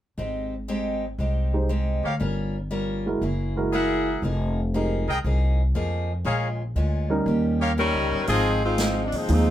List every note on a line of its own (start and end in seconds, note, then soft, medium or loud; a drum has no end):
0.18 1.15 G#1 medium
0.18 0.53 G#3 soft
0.18 0.54 C4 soft
0.18 0.54 D#4 soft
0.18 0.54 G4 soft
0.68 1.04 G#3 medium
0.68 1.04 C4 medium
0.68 1.05 D#4 medium
0.68 1.05 G4 medium
1.18 1.99 C2 medium
1.18 1.55 G#3 soft
1.18 1.55 C4 soft
1.18 1.56 D#4 soft
1.18 1.56 G4 soft
1.53 1.68 G#3 soft
1.53 1.68 D#4 soft
1.53 1.68 G4 soft
1.53 1.68 C5 medium
1.69 2.05 G#3 medium
1.69 2.05 C4 medium
1.69 2.06 D#4 medium
1.69 2.06 G4 medium
2.03 2.19 D2 medium
2.03 2.15 G4 medium
2.03 2.15 A#4 soft
2.03 2.15 C#5 medium
2.03 2.15 F5 medium
2.20 3.18 G1 medium
2.20 2.56 G3 soft
2.20 2.56 C#4 soft
2.20 2.56 F4 soft
2.20 2.57 A#4 soft
2.71 3.06 G3 medium
2.71 3.07 C#4 medium
2.71 3.07 F4 medium
2.71 3.07 A#4 medium
3.06 3.20 G#3 soft
3.06 3.20 E4 soft
3.06 3.21 F#4 soft
3.06 3.21 A#4 medium
3.21 4.19 F#1 medium
3.21 3.58 F#3 soft
3.21 3.58 A#3 soft
3.21 3.58 E4 soft
3.21 3.58 G#4 soft
3.56 4.20 G#3 medium
3.56 4.20 E4 soft
3.56 4.20 F#4 soft
3.56 4.20 A#4 medium
3.73 4.08 F#3 medium
3.73 4.08 A#3 medium
3.73 4.09 E4 medium
3.73 4.23 G#4 medium
3.73 4.09 G#4 medium
3.73 4.23 A#4 medium
3.73 4.23 E5 medium
3.73 4.23 F#5 medium
4.22 5.03 F1 medium
4.22 4.59 F3 soft
4.22 4.59 A#3 soft
4.22 4.59 D#4 soft
4.22 4.60 G#4 soft
4.74 5.10 F3 medium
4.74 5.05 G#3 soft
4.74 5.10 A#3 medium
4.74 5.05 D#4 soft
4.74 5.10 D#4 medium
4.74 5.05 G4 soft
4.74 5.10 G#4 medium
4.74 5.05 A#4 soft
5.07 5.23 C2 medium
5.07 5.19 G#4 medium
5.07 5.19 A#4 medium
5.07 5.19 D#5 medium
5.07 5.19 G5 medium
5.24 5.71 C2 medium
5.24 5.60 F3 soft
5.24 5.61 A#3 soft
5.24 5.61 D#4 soft
5.24 5.61 G#4 soft
5.75 6.22 F2 medium
5.75 6.11 F3 medium
5.75 6.11 A#3 medium
5.75 6.11 D#4 medium
5.75 6.11 G#4 medium
6.25 6.72 A#1 medium
6.25 6.61 A#2 soft
6.25 6.61 G#3 soft
6.25 6.61 C#4 medium
6.25 6.62 F4 medium
6.25 6.49 G#4 medium
6.25 6.48 A#4 medium
6.25 6.49 C#5 medium
6.25 6.49 F5 medium
6.75 7.23 D2 medium
6.75 7.12 A#2 medium
6.75 7.12 G#3 medium
6.75 7.12 C#4 medium
6.75 7.13 F4 medium
7.10 7.74 G3 medium
7.10 7.74 C#4 medium
7.10 7.74 D#4 medium
7.10 7.74 A#4 medium
7.26 7.90 D#2 medium
7.26 7.63 D#3 soft
7.26 7.63 A#3 soft
7.26 7.63 C#4 soft
7.26 7.64 G4 soft
7.61 7.72 G4 medium
7.61 7.72 A#4 medium
7.61 7.72 C#5 medium
7.61 7.72 F5 medium
7.78 8.13 D#3 medium
7.78 8.25 G3 medium
7.78 8.13 A#3 medium
7.78 8.14 C#4 medium
7.78 8.25 C#4 medium
7.78 8.25 D#4 medium
7.78 8.14 G4 medium
7.78 8.25 A#4 medium
7.94 8.10 C#2 medium
8.12 8.27 G1 medium
8.27 9.09 G#1 medium
8.27 8.64 G#2 soft
8.27 8.65 F3 soft
8.27 8.61 F3 medium
8.27 8.65 C4 soft
8.27 8.61 C4 medium
8.27 8.61 D#4 medium
8.27 8.65 D#4 soft
8.27 8.51 F4 medium
8.27 8.51 G#4 medium
8.27 8.61 G#4 medium
8.27 8.51 C5 medium
8.27 8.51 D#5 medium
8.27 open hi-hat soft
8.63 9.02 G#3 medium
8.63 9.02 C4 medium
8.63 9.02 D#4 medium
8.63 9.02 F4 medium
8.78 9.15 G#2 medium
8.78 9.15 F3 medium
8.78 9.15 C4 medium
8.78 9.15 D#4 medium
8.78 snare medium
8.78 closed hi-hat soft
9.06 9.14 D4 medium
9.12 9.28 D#2 medium
9.12 9.31 F3 medium
9.12 9.30 G#3 medium
9.12 9.30 C4 medium
9.12 9.30 D#4 medium
9.12 open hi-hat soft
9.28 9.50 D#2 medium
9.28 9.50 G#2 soft
9.28 9.50 F3 medium
9.28 9.50 F3 soft
9.28 9.50 G#3 soft
9.28 9.50 G#3 medium
9.28 9.50 C4 soft
9.28 9.50 C4 medium
9.28 9.50 D#4 soft
9.28 9.50 D#4 medium
9.28 9.50 D#4 soft
9.28 9.50 F4 medium
9.28 9.50 G#4 medium
9.28 open hi-hat soft